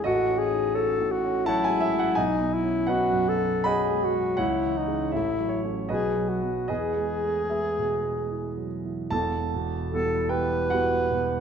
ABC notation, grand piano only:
X:1
M:3/4
L:1/16
Q:1/4=78
K:E
V:1 name="Grand piano"
[FAd]4 [FAc]4 [cfa] g e f | g4 [Bdf]4 [dfb]4 | [cf]4 [Ace]2 c2 [FBd]4 | [GBd]4 [GBe]6 z2 |
[K:Em] [Aa]6 [Gg]2 [Ff]4 |]
V:2 name="Grand piano" clef=bass
(3A,,,2 C2 D2 (3C2 A,,2 C2 (3F,2 G,2 F,2 | (3B,,,2 B,2 C2 (3B,2 F,,2 B,2 (3F,2 G,2 F,2 | (3C,,2 E,2 [G,C]2 (3A,,,2 F,2 [A,C]2 (3B,,,2 F,2 [F,B,]2 | (3E,,2 G,2 A,2 (3G,2 B,,2 G,2 (3E,2 F,2 E,2 |
[K:Em] [E,,,E,,]2 B,,2 [E,G,B,]2 E,2 [E,G,B,]2 B,,2 |]